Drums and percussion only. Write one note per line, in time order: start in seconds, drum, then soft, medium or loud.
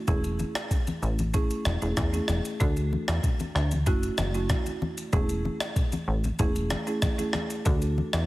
0.08 kick loud
0.08 low conga medium
0.08 shaker medium
0.24 shaker soft
0.40 high conga medium
0.40 shaker medium
0.55 cross-stick loud
0.55 shaker soft
0.71 kick loud
0.71 shaker medium
0.87 high conga medium
0.87 shaker soft
1.03 shaker medium
1.19 high conga medium
1.19 shaker medium
1.34 kick loud
1.34 low conga medium
1.34 shaker medium
1.51 shaker medium
1.65 cross-stick loud
1.65 high conga medium
1.65 shaker medium
1.82 shaker soft
1.97 kick medium
1.97 cross-stick medium
1.97 high conga medium
1.97 low conga medium
1.97 shaker medium
2.14 high conga soft
2.14 shaker medium
2.28 cross-stick medium
2.28 high conga medium
2.28 shaker medium
2.45 shaker medium
2.60 kick loud
2.60 low conga medium
2.60 shaker medium
2.77 shaker soft
2.93 high conga medium
3.08 cross-stick loud
3.08 shaker soft
3.23 kick loud
3.23 low conga medium
3.23 shaker medium
3.40 high conga medium
3.40 shaker medium
3.56 cross-stick medium
3.72 high conga medium
3.72 shaker medium
3.87 kick loud
3.87 low conga medium
3.87 shaker medium
4.03 shaker medium
4.18 cross-stick loud
4.18 high conga medium
4.18 shaker medium
4.35 shaker soft
4.50 kick medium
4.50 cross-stick medium
4.50 high conga medium
4.50 low conga medium
4.50 shaker medium
4.66 high conga medium
4.66 shaker medium
4.82 high conga medium
4.98 shaker medium
5.13 kick loud
5.13 low conga medium
5.13 shaker medium
5.29 shaker soft
5.45 high conga medium
5.60 cross-stick loud
5.60 shaker soft
5.76 kick medium
5.76 low conga medium
5.76 shaker medium
5.92 high conga medium
5.92 shaker medium
6.24 high conga medium
6.24 shaker medium
6.39 kick loud
6.39 low conga medium
6.39 shaker medium
6.56 shaker medium
6.70 cross-stick medium
6.70 high conga medium
6.70 shaker medium
6.87 shaker soft
7.02 kick medium
7.02 cross-stick medium
7.02 high conga medium
7.02 low conga medium
7.02 shaker medium
7.19 high conga medium
7.19 shaker medium
7.33 cross-stick loud
7.33 high conga medium
7.50 shaker medium
7.66 kick loud
7.66 low conga medium
7.66 shaker medium
7.82 shaker medium
7.98 high conga medium
8.13 cross-stick loud
8.13 shaker soft